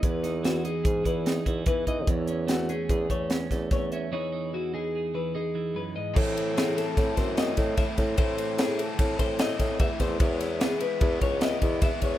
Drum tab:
CC |----------|----------|----------|x---------|
RD |----------|----------|----------|-xxxxxxxxx|
HH |xxxxxxxxxx|xxxxxxxxxx|----------|----------|
SD |-oo---o---|--o---ooo-|----------|--oooooooo|
BD |o---oo-ooo|o---oo-oo-|----------|o---oo-ooo|

CC |----------|----------|
RD |xxxxxxxxxx|xxxxxxxxxx|
HH |----------|----------|
SD |--o-o-oo-o|-oo---o-o-|
BD |o---oo-ooo|o---oo-ooo|